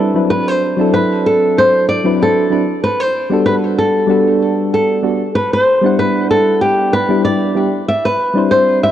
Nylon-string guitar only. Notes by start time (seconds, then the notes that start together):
Already playing: A4
0.30 B4
0.48 C5
0.94 B4
1.26 A4
1.58 C5
1.89 D5
2.23 A4
2.84 B4
3.00 C5
3.46 B4
3.79 A4
4.74 A4
5.35 B4
5.53 C5
5.99 B4
6.31 A4
6.61 G4
6.93 B4
7.25 D5
7.88 E5
8.05 B4
8.51 C5
8.83 E5